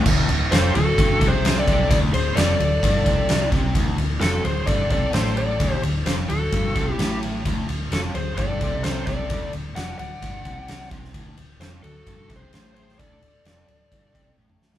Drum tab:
CC |x---------------|----------------|----------------|----------------|
RD |--x-x-x-x-x-x-x-|x-x-x-x-x-x-x-x-|x-x-x-x-x-x-x-x-|x-x-x-x-x-x-x-x-|
SD |----o-------o---|----o-------o---|----o-------oo--|----o-------o---|
T1 |----------------|----------------|----------------|----------------|
T2 |----------------|----------------|----------------|----------------|
BD |o-------o-o---o-|o-------o-o---o-|o-------o-o-----|o-------o-o-----|

CC |----------------|----------------|----------------|----------------|
RD |x-x-x-x-x-x-x-x-|x-x-x-x-x-x-x-x-|x-x-x-x-x-x-x-x-|x-x-x-x-x-x-----|
SD |----o-------o---|----o-------oo-o|----o-------o--o|----o---------oo|
T1 |----------------|----------------|----------------|------------o---|
T2 |----------------|----------------|----------------|-------------o--|
BD |o-------o-o---o-|o-------o-o---o-|o-------o-o-----|o-------o-o-----|